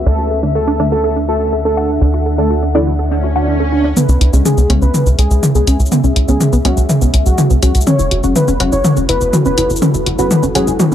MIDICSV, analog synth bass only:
0, 0, Header, 1, 2, 480
1, 0, Start_track
1, 0, Tempo, 487805
1, 64, Time_signature, 4, 2, 24, 8
1, 10773, End_track
2, 0, Start_track
2, 0, Title_t, "Analog synth bass"
2, 0, Program_c, 0, 38
2, 64, Note_on_c, 0, 38, 87
2, 1960, Note_off_c, 0, 38, 0
2, 1984, Note_on_c, 0, 38, 86
2, 3880, Note_off_c, 0, 38, 0
2, 4024, Note_on_c, 0, 37, 86
2, 4117, Note_off_c, 0, 37, 0
2, 4144, Note_on_c, 0, 37, 95
2, 4237, Note_off_c, 0, 37, 0
2, 4264, Note_on_c, 0, 37, 91
2, 4357, Note_off_c, 0, 37, 0
2, 4504, Note_on_c, 0, 37, 87
2, 4597, Note_off_c, 0, 37, 0
2, 4624, Note_on_c, 0, 37, 102
2, 4717, Note_off_c, 0, 37, 0
2, 4744, Note_on_c, 0, 37, 89
2, 4837, Note_off_c, 0, 37, 0
2, 4984, Note_on_c, 0, 37, 86
2, 5077, Note_off_c, 0, 37, 0
2, 5103, Note_on_c, 0, 37, 99
2, 5197, Note_off_c, 0, 37, 0
2, 5224, Note_on_c, 0, 37, 89
2, 5317, Note_off_c, 0, 37, 0
2, 5464, Note_on_c, 0, 37, 86
2, 5557, Note_off_c, 0, 37, 0
2, 5584, Note_on_c, 0, 37, 98
2, 5677, Note_off_c, 0, 37, 0
2, 5704, Note_on_c, 0, 37, 85
2, 5797, Note_off_c, 0, 37, 0
2, 5944, Note_on_c, 0, 37, 84
2, 6037, Note_off_c, 0, 37, 0
2, 6063, Note_on_c, 0, 37, 93
2, 6157, Note_off_c, 0, 37, 0
2, 6184, Note_on_c, 0, 37, 89
2, 6277, Note_off_c, 0, 37, 0
2, 6423, Note_on_c, 0, 37, 86
2, 6517, Note_off_c, 0, 37, 0
2, 6543, Note_on_c, 0, 37, 99
2, 6637, Note_off_c, 0, 37, 0
2, 6663, Note_on_c, 0, 37, 90
2, 6757, Note_off_c, 0, 37, 0
2, 6903, Note_on_c, 0, 37, 82
2, 6997, Note_off_c, 0, 37, 0
2, 7023, Note_on_c, 0, 37, 96
2, 7117, Note_off_c, 0, 37, 0
2, 7144, Note_on_c, 0, 37, 89
2, 7237, Note_off_c, 0, 37, 0
2, 7383, Note_on_c, 0, 37, 88
2, 7477, Note_off_c, 0, 37, 0
2, 7504, Note_on_c, 0, 37, 102
2, 7597, Note_off_c, 0, 37, 0
2, 7624, Note_on_c, 0, 37, 87
2, 7717, Note_off_c, 0, 37, 0
2, 7864, Note_on_c, 0, 30, 89
2, 7957, Note_off_c, 0, 30, 0
2, 7983, Note_on_c, 0, 30, 93
2, 8077, Note_off_c, 0, 30, 0
2, 8104, Note_on_c, 0, 30, 92
2, 8197, Note_off_c, 0, 30, 0
2, 8343, Note_on_c, 0, 30, 88
2, 8437, Note_off_c, 0, 30, 0
2, 8463, Note_on_c, 0, 30, 100
2, 8557, Note_off_c, 0, 30, 0
2, 8583, Note_on_c, 0, 30, 89
2, 8677, Note_off_c, 0, 30, 0
2, 8823, Note_on_c, 0, 30, 82
2, 8917, Note_off_c, 0, 30, 0
2, 8943, Note_on_c, 0, 30, 100
2, 9037, Note_off_c, 0, 30, 0
2, 9063, Note_on_c, 0, 30, 86
2, 9157, Note_off_c, 0, 30, 0
2, 9303, Note_on_c, 0, 30, 87
2, 9397, Note_off_c, 0, 30, 0
2, 9424, Note_on_c, 0, 30, 98
2, 9517, Note_off_c, 0, 30, 0
2, 9543, Note_on_c, 0, 30, 89
2, 9637, Note_off_c, 0, 30, 0
2, 9783, Note_on_c, 0, 30, 85
2, 9877, Note_off_c, 0, 30, 0
2, 9903, Note_on_c, 0, 30, 94
2, 9997, Note_off_c, 0, 30, 0
2, 10024, Note_on_c, 0, 30, 92
2, 10117, Note_off_c, 0, 30, 0
2, 10263, Note_on_c, 0, 30, 83
2, 10357, Note_off_c, 0, 30, 0
2, 10383, Note_on_c, 0, 30, 102
2, 10477, Note_off_c, 0, 30, 0
2, 10503, Note_on_c, 0, 30, 88
2, 10597, Note_off_c, 0, 30, 0
2, 10743, Note_on_c, 0, 30, 88
2, 10773, Note_off_c, 0, 30, 0
2, 10773, End_track
0, 0, End_of_file